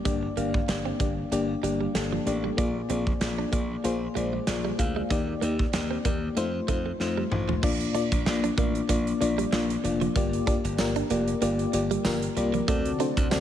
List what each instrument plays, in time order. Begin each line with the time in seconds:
Already playing: fm electric piano A#3 D4 G4 D5
0.05 slap bass G1, fm electric piano G2 A#3 D4 G4 D5, clean electric guitar G3, kick, closed hi-hat
0.23 muted clean electric guitar stroke
0.37 slap bass G1, fm electric piano A#3 D4 G4 F5, clean electric guitar A#3, closed hi-hat
0.54 kick
0.68 slap bass G1, fm electric piano A#3 D4 G4 D5, muted clean electric guitar stroke, snare, closed hi-hat
0.85 clean electric guitar C4
0.99 slap bass G1, fm electric piano A#3 D4 G4 D5, clean electric guitar A#3, kick, closed hi-hat
1.31 slap bass G1, fm electric piano A#3 D4 G4 D5, muted clean electric guitar stroke, closed hi-hat
1.63 slap bass G1, clean electric guitar G3, fm electric piano A#3 D4 G4 D5, closed hi-hat
1.81 clean electric guitar G3
1.94 slap bass G1, fm electric piano A#3 D4 G4 A4, snare, closed hi-hat
2.12 clean electric guitar F3
2.26 slap bass A1, fm electric piano A#3 D4 G4 D5, muted clean electric guitar stroke, closed hi-hat
2.44 clean electric guitar G3
2.57 slap bass A#1, fm electric piano A#2 A#3 F4 G#4 D5, clean electric guitar A#3, kick, closed hi-hat
2.76 muted clean electric guitar stroke
2.89 slap bass A#1, fm electric piano A#3 F4 G#4 D5, clean electric guitar C4, closed hi-hat
3.07 kick
3.20 slap bass A#1, fm electric piano A#3 F4 G#4 D5, muted clean electric guitar stroke, snare, closed hi-hat
3.38 clean electric guitar D4
3.51 slap bass A#1, fm electric piano A#3 F4 G#4 D5, clean electric guitar A#3, kick, closed hi-hat
3.84 slap bass A#1, fm electric piano A#3 F4 G#4 C5, muted clean electric guitar stroke, closed hi-hat
4.15 slap bass A#1, clean electric guitar G#3, fm electric piano A#3 F4 G#4 D5, closed hi-hat
4.33 clean electric guitar G#3
4.47 slap bass A#1, fm electric piano A#3 F4 G#4 D5, snare, closed hi-hat
4.65 clean electric guitar G3
4.78 slap bass D2, fm electric piano A#3 F4 G#4 F5, muted clean electric guitar stroke, kick, closed hi-hat
4.96 clean electric guitar G#3
5.10 slap bass D#2, fm electric piano D#3 A#3 D#4 G4 D5, clean electric guitar D#4, kick, closed hi-hat
5.28 muted clean electric guitar stroke
5.41 slap bass D#2, clean electric guitar A#3, fm electric piano A#3 D#4 G4 D5, closed hi-hat
5.59 kick
5.73 slap bass D#2, fm electric piano A#3 D#4 G4 D5, muted clean electric guitar stroke, snare, closed hi-hat
5.91 clean electric guitar C4
6.05 slap bass D#2, fm electric piano A#3 D#4 G4 D5, clean electric guitar A#3, kick, closed hi-hat
6.36 slap bass F2, fm electric piano A3 D#4 F4 C5, muted clean electric guitar stroke, closed hi-hat
6.68 slap bass F2, fm electric piano A3 D#4 F4 C5, clean electric guitar A3, kick, closed hi-hat
6.86 clean electric guitar A3
7.00 slap bass F2, fm electric piano A3 D#4 F4 C5, snare
7.17 clean electric guitar G3
7.31 slap bass A1, fm electric piano A3 D#4 F4 C5, muted clean electric guitar stroke, mid tom
7.49 clean electric guitar F3, floor tom
7.63 slap bass A#1, fm electric piano A#2 A#3 D4 F4 D5, clean electric guitar A#3, kick, crash
7.80 closed hi-hat
7.95 fm electric piano A#3 D4 F4 D5, clean electric guitar D4, closed hi-hat
8.12 slap bass A#1, muted clean electric guitar stroke, kick, closed hi-hat
8.26 slap bass A#1, fm electric piano A#3 D4 F4 D5, muted clean electric guitar stroke, snare
8.44 clean electric guitar D4, closed hi-hat
8.57 slap bass A1, fm electric piano A#3 D4 F4 D5, clean electric guitar A#3, kick, closed hi-hat
8.75 closed hi-hat
8.89 slap bass A#1, fm electric piano A#3 D4 F4 D5, clean electric guitar A#3, kick, closed hi-hat
9.07 closed hi-hat
9.21 slap bass A#1, fm electric piano A#3 D4 F4 D5, muted clean electric guitar stroke, closed hi-hat
9.38 clean electric guitar G3, closed hi-hat
9.52 slap bass A#1, clean electric guitar F3, fm electric piano A#3 D4 F4 D5, snare
9.70 closed hi-hat
9.83 slap bass F1, fm electric piano A#3 D4 F4 D5, muted clean electric guitar stroke, closed hi-hat
10.01 clean electric guitar F3, closed hi-hat
10.16 slap bass G1, fm electric piano G2 A#3 F4 G4 D5, clean electric guitar A#3, kick, closed hi-hat
10.33 closed hi-hat
10.46 fm electric piano A#3 F4 G4 D5, clean electric guitar D4, kick, closed hi-hat
10.64 slap bass G1, muted clean electric guitar stroke, closed hi-hat
10.78 slap bass G1, fm electric piano A#3 F4 G4 A#4, muted clean electric guitar stroke, snare, tambourine
10.96 clean electric guitar D4, closed hi-hat
11.10 slap bass F1, fm electric piano A#3 F4 G4 D5, clean electric guitar A#3, closed hi-hat
11.28 closed hi-hat
11.42 slap bass G1, fm electric piano A#3 F4 G4 D5, clean electric guitar A#3, closed hi-hat
11.59 closed hi-hat
11.73 slap bass G1, fm electric piano A#3 F4 G4 D5, muted clean electric guitar stroke, closed hi-hat
11.91 clean electric guitar G3, closed hi-hat
12.05 slap bass G1, clean electric guitar F3, fm electric piano A#3 F4 G4 A#4, snare, tambourine
12.22 closed hi-hat
12.36 slap bass C2, fm electric piano A#3 F4 G4 D5, muted clean electric guitar stroke, closed hi-hat
12.54 clean electric guitar F3, closed hi-hat
12.68 slap bass D2, ambient pad C3 F#3 A3 D4 F#4, fm electric piano D3 C4 F#4 A4 D5, clean electric guitar A3, kick, closed hi-hat
12.85 closed hi-hat
12.99 fm electric piano C4 F#4 A4 C5, clean electric guitar D4, closed hi-hat
13.17 slap bass D2, muted clean electric guitar stroke, kick, closed hi-hat
13.31 slap bass D2, fm electric piano C4 F#4 A4 D5, muted clean electric guitar stroke, snare, tambourine